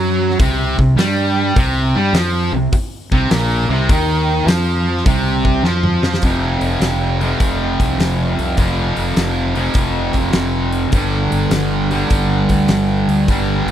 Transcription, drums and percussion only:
0.30 snare
0.39 kick, open hi-hat
0.79 kick
0.98 snare, open hi-hat
1.56 kick, open hi-hat
2.14 snare, open hi-hat
2.73 kick, open hi-hat
3.12 kick
3.31 snare, open hi-hat
3.89 kick, open hi-hat
4.48 snare, open hi-hat
4.97 snare
5.06 kick, open hi-hat
5.45 kick
5.65 snare
5.83 mid tom
6.03 snare
6.14 snare
6.22 kick, open hi-hat
6.61 open hi-hat
6.81 snare, open hi-hat
7.21 open hi-hat
7.40 kick, open hi-hat
7.80 kick, open hi-hat
8.00 snare, open hi-hat
8.39 open hi-hat
8.57 kick, open hi-hat
8.97 open hi-hat
9.17 snare, open hi-hat
9.55 open hi-hat
9.74 kick, open hi-hat
10.13 kick, open hi-hat
10.33 snare, open hi-hat
10.72 open hi-hat
10.92 kick, open hi-hat
11.32 open hi-hat
11.51 snare, open hi-hat
11.91 open hi-hat
12.10 kick, open hi-hat
12.49 kick, open hi-hat
12.68 snare, open hi-hat
13.09 open hi-hat
13.28 kick, open hi-hat
13.68 open hi-hat

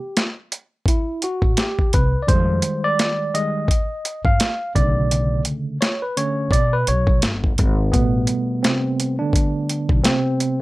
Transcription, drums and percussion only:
0.17 snare, closed hi-hat
0.52 closed hi-hat
0.86 kick, closed hi-hat
1.22 closed hi-hat
1.42 kick
1.57 snare, closed hi-hat
1.79 kick
1.93 kick, closed hi-hat
2.28 kick, closed hi-hat
2.62 closed hi-hat
2.99 snare, closed hi-hat
3.35 closed hi-hat
3.68 kick, closed hi-hat
4.05 closed hi-hat
4.25 kick
4.40 snare, closed hi-hat
4.76 kick, closed hi-hat
5.11 closed hi-hat
5.45 closed hi-hat
5.82 snare, closed hi-hat
6.17 closed hi-hat
6.51 kick, closed hi-hat
6.87 closed hi-hat
7.07 kick
7.22 snare, closed hi-hat
7.44 kick
7.58 kick, closed hi-hat
7.93 kick, closed hi-hat
8.27 closed hi-hat
8.64 snare, closed hi-hat
9.00 closed hi-hat
9.33 kick, closed hi-hat
9.69 closed hi-hat
9.89 kick
10.04 snare, closed hi-hat
10.40 closed hi-hat

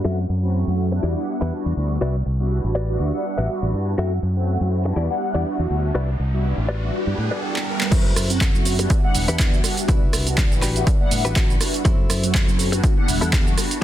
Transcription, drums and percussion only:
7.56 clap
7.81 clap
7.92 kick, closed hi-hat, crash, shaker
8.16 cross-stick, open hi-hat, shaker
8.30 closed hi-hat, shaker
8.41 kick, clap, closed hi-hat, shaker
8.55 shaker
8.65 open hi-hat, shaker
8.79 closed hi-hat, shaker
8.90 kick, closed hi-hat, shaker
9.15 open hi-hat, shaker
9.28 closed hi-hat, shaker
9.39 kick, clap, closed hi-hat, shaker
9.53 shaker
9.64 cross-stick, open hi-hat, shaker
9.77 closed hi-hat, shaker
9.89 kick, closed hi-hat, shaker
10.13 cross-stick, open hi-hat, shaker
10.27 closed hi-hat, shaker
10.38 kick, clap, closed hi-hat, shaker
10.52 shaker
10.62 clap, open hi-hat, shaker
10.76 closed hi-hat, shaker
10.87 kick, closed hi-hat, shaker
11.11 open hi-hat, shaker
11.25 closed hi-hat, shaker
11.36 kick, clap, closed hi-hat, shaker
11.50 shaker
11.61 cross-stick, open hi-hat, shaker
11.74 closed hi-hat, shaker
11.85 kick, closed hi-hat, shaker
12.10 cross-stick, open hi-hat, shaker
12.23 closed hi-hat, shaker
12.34 kick, clap, closed hi-hat, shaker
12.49 shaker
12.59 open hi-hat, shaker
12.73 closed hi-hat, shaker
12.84 kick, closed hi-hat, shaker
13.08 open hi-hat, shaker
13.22 closed hi-hat, shaker
13.33 kick, clap, closed hi-hat, shaker
13.47 shaker
13.58 cross-stick, open hi-hat, shaker
13.71 closed hi-hat, shaker

